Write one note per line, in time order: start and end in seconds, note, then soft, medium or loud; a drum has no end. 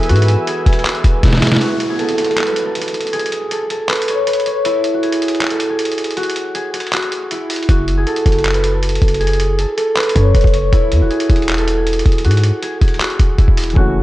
0.00 0.11 E1 loud
0.00 1.55 E3 medium
0.00 1.57 G#3 medium
0.00 1.58 B3 medium
0.00 1.19 E4 loud
0.00 0.47 G#4 medium
0.00 1.59 G#4 medium
0.00 0.24 B4 medium
0.00 1.58 B4 medium
0.00 0.30 C#5 medium
0.00 1.58 E5 medium
0.00 1.58 G#5 medium
0.00 1.58 E6 medium
0.00 closed hi-hat medium
0.09 0.36 G#2 loud
0.09 0.85 F#4 loud
0.09 closed hi-hat medium
0.16 closed hi-hat medium
0.22 closed hi-hat medium
0.28 closed hi-hat medium
0.47 0.65 G#4 medium
0.47 closed hi-hat medium
0.66 0.85 E1 loud
0.66 1.89 G#4 medium
0.66 kick medium
0.66 closed hi-hat medium
0.73 closed hi-hat medium
0.79 closed hi-hat soft
0.85 1.61 F#4 medium
0.85 clap loud
0.85 closed hi-hat medium
0.95 closed hi-hat soft
1.04 1.23 E1 loud
1.04 kick loud
1.04 closed hi-hat medium
1.23 1.41 E1 loud
1.23 3.85 E4 medium
1.23 kick medium
1.23 snare medium
1.23 closed hi-hat medium
1.28 snare medium
1.33 snare medium
1.38 snare medium
1.42 snare medium
1.42 closed hi-hat medium
1.42 open hi-hat medium
1.47 snare medium
1.47 closed hi-hat medium
1.52 snare loud
1.52 closed hi-hat soft
1.56 snare loud
1.61 4.05 F#4 loud
1.61 closed hi-hat medium
1.61 downlifter medium
1.80 closed hi-hat medium
1.90 2.05 G#4 medium
1.99 2.66 A4 medium
1.99 closed hi-hat soft
2.09 closed hi-hat medium
2.18 closed hi-hat medium
2.25 closed hi-hat medium
2.31 closed hi-hat soft
2.37 clap loud
2.37 closed hi-hat medium
2.46 3.88 B4 medium
2.46 closed hi-hat medium
2.56 closed hi-hat medium
2.66 3.19 A4 medium
2.75 closed hi-hat medium
2.82 closed hi-hat medium
2.88 closed hi-hat medium
2.94 closed hi-hat medium
3.00 closed hi-hat medium
3.07 closed hi-hat medium
3.13 3.57 G#4 loud
3.13 closed hi-hat medium
3.19 closed hi-hat medium
3.26 closed hi-hat medium
3.32 closed hi-hat medium
3.51 3.69 A4 medium
3.51 closed hi-hat medium
3.70 5.09 A4 medium
3.70 closed hi-hat medium
3.88 4.27 B4 medium
3.88 clap loud
3.88 closed hi-hat soft
3.95 closed hi-hat medium
4.02 closed hi-hat medium
4.08 4.46 C#5 medium
4.08 closed hi-hat medium
4.27 6.32 B4 medium
4.27 closed hi-hat medium
4.33 closed hi-hat medium
4.40 closed hi-hat soft
4.46 6.38 C#5 medium
4.46 closed hi-hat medium
4.65 7.26 E4 loud
4.65 closed hi-hat medium
4.84 closed hi-hat medium
4.94 6.16 F#4 medium
5.03 5.57 G#4 medium
5.03 closed hi-hat soft
5.12 closed hi-hat medium
5.22 closed hi-hat medium
5.28 closed hi-hat medium
5.35 closed hi-hat soft
5.41 clap loud
5.41 closed hi-hat medium
5.50 5.76 A4 medium
5.50 closed hi-hat medium
5.60 closed hi-hat medium
5.70 6.54 G#4 medium
5.79 closed hi-hat medium
5.85 closed hi-hat medium
5.92 closed hi-hat medium
5.98 closed hi-hat medium
6.04 closed hi-hat medium
6.11 closed hi-hat medium
6.17 6.93 F#4 loud
6.17 closed hi-hat medium
6.23 closed hi-hat medium
6.30 closed hi-hat medium
6.36 closed hi-hat medium
6.55 6.73 G#4 medium
6.55 closed hi-hat medium
6.73 7.97 G#4 medium
6.73 closed hi-hat medium
6.80 closed hi-hat medium
6.87 closed hi-hat soft
6.93 7.69 F#4 medium
6.93 clap loud
6.93 closed hi-hat medium
7.02 closed hi-hat soft
7.12 closed hi-hat medium
7.31 9.92 E4 medium
7.31 closed hi-hat medium
7.50 closed hi-hat medium
7.50 open hi-hat medium
7.56 closed hi-hat medium
7.62 closed hi-hat soft
7.69 8.05 F#1 loud
7.69 10.13 F#4 loud
7.69 kick loud
7.69 closed hi-hat medium
7.88 closed hi-hat medium
7.97 8.13 G#4 medium
8.07 8.73 A4 medium
8.07 closed hi-hat soft
8.16 closed hi-hat medium
8.26 8.99 F#1 loud
8.26 kick medium
8.26 closed hi-hat medium
8.32 closed hi-hat medium
8.38 closed hi-hat soft
8.45 clap loud
8.45 closed hi-hat medium
8.54 9.96 B4 medium
8.54 closed hi-hat medium
8.64 closed hi-hat medium
8.74 9.26 A4 medium
8.83 closed hi-hat medium
8.89 closed hi-hat medium
8.95 closed hi-hat medium
9.02 9.66 F#1 loud
9.02 kick medium
9.02 closed hi-hat medium
9.08 closed hi-hat medium
9.14 closed hi-hat medium
9.20 9.65 G#4 loud
9.20 closed hi-hat medium
9.27 closed hi-hat medium
9.33 closed hi-hat medium
9.40 closed hi-hat medium
9.59 9.77 A4 medium
9.59 closed hi-hat medium
9.77 11.16 A4 medium
9.77 closed hi-hat medium
9.96 10.34 B4 medium
9.96 clap loud
9.96 closed hi-hat soft
10.03 closed hi-hat medium
10.09 closed hi-hat medium
10.16 10.34 F#2 loud
10.16 10.54 C#5 medium
10.16 kick loud
10.16 closed hi-hat medium
10.35 10.44 F#1 loud
10.35 12.40 B4 medium
10.35 kick medium
10.35 closed hi-hat medium
10.41 10.72 F#1 loud
10.41 kick medium
10.41 closed hi-hat medium
10.47 closed hi-hat soft
10.54 12.45 C#5 medium
10.54 closed hi-hat medium
10.73 10.93 E1 loud
10.73 13.34 E4 loud
10.73 kick loud
10.73 closed hi-hat medium
10.92 11.03 E2 loud
10.92 closed hi-hat medium
11.01 11.10 E1 loud
11.01 12.24 F#4 medium
11.10 11.64 G#4 medium
11.10 closed hi-hat soft
11.20 closed hi-hat medium
11.30 12.03 E1 loud
11.30 kick medium
11.30 closed hi-hat medium
11.36 closed hi-hat medium
11.42 closed hi-hat soft
11.49 clap loud
11.49 closed hi-hat medium
11.58 11.83 A4 medium
11.58 closed hi-hat medium
11.68 closed hi-hat medium
11.77 12.62 G#4 medium
11.87 closed hi-hat medium
11.93 closed hi-hat medium
11.99 closed hi-hat medium
12.06 12.26 E1 loud
12.06 kick loud
12.06 closed hi-hat medium
12.12 closed hi-hat medium
12.18 closed hi-hat medium
12.25 12.52 G#2 loud
12.25 13.00 F#4 loud
12.25 closed hi-hat medium
12.31 closed hi-hat medium
12.37 closed hi-hat medium
12.44 closed hi-hat medium
12.62 12.81 G#4 medium
12.62 closed hi-hat medium
12.81 13.00 E1 loud
12.81 14.03 G#4 medium
12.81 kick medium
12.81 closed hi-hat medium
12.88 closed hi-hat medium
12.94 closed hi-hat soft
13.01 13.76 F#4 medium
13.01 clap loud
13.01 closed hi-hat medium
13.10 closed hi-hat soft
13.19 13.38 E1 loud
13.19 kick loud
13.19 closed hi-hat medium
13.38 13.48 E1 loud
13.38 14.03 E4 medium
13.38 kick medium
13.38 closed hi-hat medium
13.48 13.75 E1 loud
13.48 kick medium
13.57 closed hi-hat medium
13.57 open hi-hat medium
13.64 closed hi-hat medium
13.70 14.03 E3 medium
13.70 closed hi-hat soft
13.75 14.03 F#1 loud
13.75 14.03 A3 medium
13.75 14.03 C#4 medium
13.75 14.03 F#4 loud
13.75 kick loud
13.80 14.03 F#4 medium